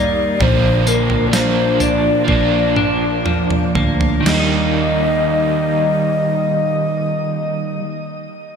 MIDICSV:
0, 0, Header, 1, 7, 480
1, 0, Start_track
1, 0, Key_signature, -3, "major"
1, 0, Tempo, 921659
1, 211, Time_signature, 4, 2, 24, 8
1, 693, Tempo, 961538
1, 1653, Tempo, 1020408
1, 4150, End_track
2, 0, Start_track
2, 0, Title_t, "Ocarina"
2, 0, Program_c, 0, 79
2, 0, Note_on_c, 0, 74, 98
2, 217, Note_on_c, 0, 72, 100
2, 225, Note_off_c, 0, 74, 0
2, 459, Note_on_c, 0, 70, 84
2, 467, Note_off_c, 0, 72, 0
2, 664, Note_on_c, 0, 74, 63
2, 672, Note_off_c, 0, 70, 0
2, 702, Note_on_c, 0, 72, 97
2, 710, Note_off_c, 0, 74, 0
2, 937, Note_on_c, 0, 74, 95
2, 945, Note_off_c, 0, 72, 0
2, 1657, Note_off_c, 0, 74, 0
2, 2133, Note_on_c, 0, 75, 100
2, 3791, Note_off_c, 0, 75, 0
2, 4150, End_track
3, 0, Start_track
3, 0, Title_t, "Analog synth pad"
3, 0, Program_c, 1, 89
3, 0, Note_on_c, 1, 55, 68
3, 0, Note_on_c, 1, 58, 66
3, 0, Note_on_c, 1, 63, 86
3, 188, Note_off_c, 1, 55, 0
3, 191, Note_off_c, 1, 63, 0
3, 212, Note_on_c, 1, 53, 75
3, 212, Note_on_c, 1, 62, 93
3, 2106, Note_off_c, 1, 58, 0
3, 2108, Note_off_c, 1, 53, 0
3, 2108, Note_off_c, 1, 62, 0
3, 2126, Note_on_c, 1, 58, 67
3, 2126, Note_on_c, 1, 63, 76
3, 2127, Note_on_c, 1, 55, 77
3, 3784, Note_off_c, 1, 55, 0
3, 3784, Note_off_c, 1, 58, 0
3, 3784, Note_off_c, 1, 63, 0
3, 4150, End_track
4, 0, Start_track
4, 0, Title_t, "Clean electric guitar"
4, 0, Program_c, 2, 27
4, 0, Note_on_c, 2, 51, 88
4, 0, Note_on_c, 2, 55, 53
4, 0, Note_on_c, 2, 58, 71
4, 0, Note_on_c, 2, 63, 62
4, 210, Note_off_c, 2, 51, 0
4, 211, Note_on_c, 2, 46, 77
4, 258, Note_off_c, 2, 55, 0
4, 258, Note_off_c, 2, 63, 0
4, 448, Note_off_c, 2, 58, 0
4, 450, Note_on_c, 2, 58, 64
4, 693, Note_on_c, 2, 53, 67
4, 930, Note_on_c, 2, 62, 58
4, 1165, Note_off_c, 2, 58, 0
4, 1167, Note_on_c, 2, 58, 65
4, 1402, Note_off_c, 2, 62, 0
4, 1408, Note_on_c, 2, 62, 65
4, 1647, Note_off_c, 2, 53, 0
4, 1653, Note_on_c, 2, 53, 55
4, 1886, Note_off_c, 2, 58, 0
4, 1888, Note_on_c, 2, 58, 61
4, 2100, Note_on_c, 2, 51, 72
4, 2126, Note_off_c, 2, 46, 0
4, 2133, Note_off_c, 2, 53, 0
4, 2135, Note_on_c, 2, 55, 70
4, 2162, Note_off_c, 2, 58, 0
4, 2164, Note_on_c, 2, 58, 77
4, 2174, Note_off_c, 2, 62, 0
4, 2189, Note_on_c, 2, 63, 75
4, 3777, Note_off_c, 2, 51, 0
4, 3812, Note_off_c, 2, 55, 0
4, 3840, Note_off_c, 2, 58, 0
4, 3866, Note_off_c, 2, 63, 0
4, 4150, End_track
5, 0, Start_track
5, 0, Title_t, "Overdriven electric guitar"
5, 0, Program_c, 3, 29
5, 0, Note_on_c, 3, 55, 58
5, 0, Note_on_c, 3, 58, 60
5, 0, Note_on_c, 3, 63, 63
5, 0, Note_on_c, 3, 70, 66
5, 202, Note_off_c, 3, 55, 0
5, 207, Note_on_c, 3, 46, 68
5, 212, Note_on_c, 3, 50, 77
5, 216, Note_off_c, 3, 58, 0
5, 216, Note_on_c, 3, 53, 82
5, 218, Note_on_c, 3, 58, 72
5, 220, Note_off_c, 3, 63, 0
5, 222, Note_on_c, 3, 62, 81
5, 224, Note_off_c, 3, 70, 0
5, 226, Note_on_c, 3, 70, 96
5, 679, Note_off_c, 3, 53, 0
5, 685, Note_on_c, 3, 53, 62
5, 691, Note_off_c, 3, 46, 0
5, 693, Note_off_c, 3, 50, 0
5, 693, Note_off_c, 3, 58, 0
5, 695, Note_on_c, 3, 58, 60
5, 698, Note_off_c, 3, 62, 0
5, 704, Note_on_c, 3, 62, 64
5, 709, Note_off_c, 3, 70, 0
5, 711, Note_on_c, 3, 70, 69
5, 1143, Note_off_c, 3, 53, 0
5, 1149, Note_on_c, 3, 53, 63
5, 1169, Note_off_c, 3, 58, 0
5, 1171, Note_off_c, 3, 62, 0
5, 1171, Note_on_c, 3, 58, 58
5, 1189, Note_on_c, 3, 62, 63
5, 1203, Note_off_c, 3, 70, 0
5, 1205, Note_on_c, 3, 70, 56
5, 2110, Note_on_c, 3, 51, 87
5, 2118, Note_off_c, 3, 53, 0
5, 2127, Note_on_c, 3, 55, 80
5, 2136, Note_off_c, 3, 62, 0
5, 2140, Note_off_c, 3, 58, 0
5, 2142, Note_on_c, 3, 58, 79
5, 2154, Note_on_c, 3, 63, 78
5, 2165, Note_off_c, 3, 70, 0
5, 2166, Note_on_c, 3, 70, 92
5, 3786, Note_off_c, 3, 51, 0
5, 3804, Note_off_c, 3, 55, 0
5, 3818, Note_off_c, 3, 58, 0
5, 3830, Note_off_c, 3, 63, 0
5, 3843, Note_off_c, 3, 70, 0
5, 4150, End_track
6, 0, Start_track
6, 0, Title_t, "Picked electric bass"
6, 0, Program_c, 4, 34
6, 0, Note_on_c, 4, 41, 90
6, 191, Note_off_c, 4, 41, 0
6, 210, Note_on_c, 4, 34, 97
6, 1146, Note_off_c, 4, 34, 0
6, 1168, Note_on_c, 4, 34, 99
6, 1869, Note_off_c, 4, 34, 0
6, 1887, Note_on_c, 4, 38, 83
6, 2114, Note_off_c, 4, 38, 0
6, 2127, Note_on_c, 4, 39, 92
6, 3785, Note_off_c, 4, 39, 0
6, 4150, End_track
7, 0, Start_track
7, 0, Title_t, "Drums"
7, 211, Note_on_c, 9, 43, 107
7, 263, Note_off_c, 9, 43, 0
7, 452, Note_on_c, 9, 54, 65
7, 504, Note_off_c, 9, 54, 0
7, 572, Note_on_c, 9, 43, 54
7, 624, Note_off_c, 9, 43, 0
7, 693, Note_on_c, 9, 38, 109
7, 694, Note_on_c, 9, 54, 93
7, 743, Note_off_c, 9, 38, 0
7, 743, Note_off_c, 9, 54, 0
7, 929, Note_on_c, 9, 43, 59
7, 929, Note_on_c, 9, 54, 62
7, 979, Note_off_c, 9, 43, 0
7, 979, Note_off_c, 9, 54, 0
7, 1167, Note_on_c, 9, 36, 85
7, 1167, Note_on_c, 9, 48, 53
7, 1217, Note_off_c, 9, 36, 0
7, 1217, Note_off_c, 9, 48, 0
7, 1409, Note_on_c, 9, 47, 68
7, 1459, Note_off_c, 9, 47, 0
7, 1654, Note_on_c, 9, 45, 74
7, 1701, Note_off_c, 9, 45, 0
7, 1771, Note_on_c, 9, 45, 74
7, 1818, Note_off_c, 9, 45, 0
7, 1888, Note_on_c, 9, 43, 97
7, 1935, Note_off_c, 9, 43, 0
7, 2007, Note_on_c, 9, 43, 83
7, 2055, Note_off_c, 9, 43, 0
7, 2127, Note_on_c, 9, 38, 109
7, 2127, Note_on_c, 9, 49, 90
7, 2174, Note_off_c, 9, 38, 0
7, 2174, Note_off_c, 9, 49, 0
7, 4150, End_track
0, 0, End_of_file